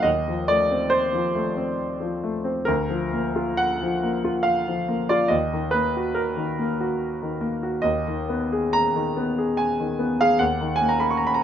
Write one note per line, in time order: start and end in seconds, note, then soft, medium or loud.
0.03 2.63 D#2 medium
0.03 0.48 D#5 medium
0.28 0.63 F3 soft
0.48 0.85 A3 soft
0.48 0.93 D5 medium
0.71 1.41 C4 soft
0.90 2.22 C5 medium
1.13 1.49 F3 soft
1.35 1.71 A3 soft
1.57 2.27 C4 soft
2.01 2.36 F3 soft
2.23 2.59 A3 soft
2.44 2.67 C4 medium
2.65 5.28 D2 medium
2.65 3.59 A#4 medium
2.90 3.27 F3 soft
3.13 3.51 A#3 soft
3.36 4.08 F4 soft
3.57 4.46 F#5 medium
3.82 4.17 F3 soft
4.03 4.38 A#3 soft
4.25 4.94 F4 medium
4.43 5.09 F5 medium
4.68 5.02 F3 soft
4.88 5.23 A#3 medium
5.09 5.32 F4 medium
5.09 5.31 D5 medium
5.28 7.80 D#2 medium
5.28 5.73 D#5 medium
5.53 5.87 D#3 soft
5.71 6.08 A#3 soft
5.71 6.15 B4 medium
5.97 6.64 F#4 soft
6.15 7.41 A#4 medium
6.37 6.71 D#3 medium
6.59 6.93 A#3 medium
6.81 7.47 F#4 soft
7.22 7.55 D#3 soft
7.41 7.75 A#3 medium
7.63 7.85 F#4 medium
7.82 10.36 D#2 medium
7.82 8.73 D#5 medium
8.07 8.44 D#3 soft
8.29 8.66 B3 soft
8.52 9.21 G#4 soft
8.73 9.57 A#5 loud
8.95 9.29 D#3 medium
9.17 9.50 B3 medium
9.38 10.04 G#4 soft
9.57 10.20 G#5 medium
9.80 10.12 D#3 soft
9.99 10.32 B3 medium
10.21 10.41 G#4 medium
10.21 10.41 F5 medium
10.39 11.43 D#2 medium
10.39 10.76 F#5 medium
10.61 10.93 D#3 soft
10.76 10.90 G#5 medium
10.81 11.14 A#3 medium
10.89 11.01 A#5 medium
11.00 11.43 A#4 soft
11.00 11.10 B5 medium
11.10 11.18 C#6 medium
11.17 11.25 A#5 medium
11.27 11.34 B5 medium
11.34 11.43 A#5 medium